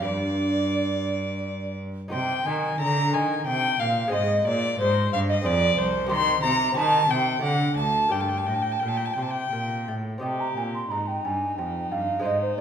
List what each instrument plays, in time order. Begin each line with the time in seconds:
0.00 lute D4 G4 B4
0.05 lute G2, cello G2, flute D5, violin D5
2.08 cello C3, lute D#4 C5, flute G5
2.12 lute C3, violin G5
2.46 lute D#3, cello D#3, violin G#5, flute G#5
2.79 lute D3, cello D3, flute A#5, violin A#5
3.13 lute D#3, cello D#3, flute G#5, violin G#5
3.46 lute C3, cello C3, flute G5, violin G5
3.80 lute A#2, cello A#2, violin F5, flute F5
4.08 lute G#3 C4 G#4
4.12 lute G#2 C5, cello G#2, flute D#5, violin D#5
4.47 cello A#2, lute A#2, flute D5, violin D5
4.80 cello G#2, lute G#2, flute C5, violin C5
5.13 cello G2, lute G2, violin F5, flute F5
5.29 flute D#5, violin D#5
5.42 lute C4 G#4 C5, flute D5
5.46 cello F2, lute F2, violin D5
5.77 cello C2, flute C5, violin C5
6.06 lute C4 G4 C5, flute C6
6.11 cello D#3, lute D#3, violin C6
6.43 lute C3, cello C3, flute A#5, violin A#5
6.72 lute C4 G4 C5
6.76 cello D#3, lute D#3, flute A5, violin A5
7.09 cello C3, lute C3, flute G5, violin G5
7.39 cello D3, lute A3 A4 D5, violin F#5
7.44 lute D3, flute F#5
7.77 cello D2, lute D2, violin A5, flute A5
8.08 lute A#3 G4 D5, violin G5, flute G5
8.13 cello G2, lute G2
8.21 violin A5
8.29 violin G5
8.37 violin A5
8.46 cello A2, lute A2, violin G5
8.54 violin A5
8.62 violin G5
8.72 violin A5
8.80 lute A#2, cello A#2, violin G5
8.88 violin A5
8.97 violin G5
9.05 violin A5
9.13 violin G5
9.18 lute C3, cello C3
9.22 violin A5
9.30 violin G5
9.53 lute A#2, cello A#2
9.88 lute A2, cello A2
10.18 lute C4 G4 D#5
10.22 lute C3, cello C3, violin G4, flute G5
10.40 flute A#5
10.57 lute A#2, cello A#2, flute G#5
10.74 flute C6
10.91 cello G#2, lute G#2, violin D#4, flute A#5
11.08 flute G5
11.24 cello G2, lute G2, flute G#5
11.58 lute F2, cello F2, flute G5
11.92 lute G2, cello G2, flute F5
12.19 lute G#3 C4 G#4
12.24 lute G#2 C5, cello G#2, flute D#5
12.42 flute C5